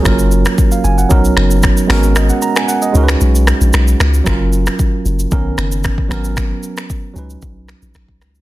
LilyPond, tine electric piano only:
\new Staff \with { instrumentName = "Tine electric piano" } { \time 4/4 \key fis \major \tempo 4 = 114 << { gis'16 r4 eis''16 gis''16 fis''8 r4. r16 | dis''16 fis''16 ais''16 gis''16 fis''16 dis''8 r2 r16 | r1 | r1 | } \\ { <fis ais cis' eis' ais'>2 <fis b cis' dis' ais'>4. <gis b cis' fis' ais'>8~ | <gis b cis' fis' ais'>4. <gis cis' dis' fis' ais' b'>2~ <gis cis' dis' fis' ais' b'>8 | <fis cis' eis' ais'>2 <d dis b cis' ais'>4. <fis b cis' ais'>8~ | <fis b cis' ais'>4. <fis cis' dis' b'>2~ <fis cis' dis' b'>8 | } >> }